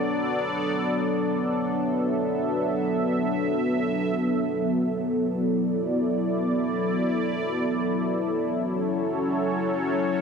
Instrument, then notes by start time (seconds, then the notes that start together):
analog synth pad
Already playing: F#3 B3 D4 A4 D5
1.76 E5
5.16 E4 D5
8.57 F#3 C#4 A4 C#5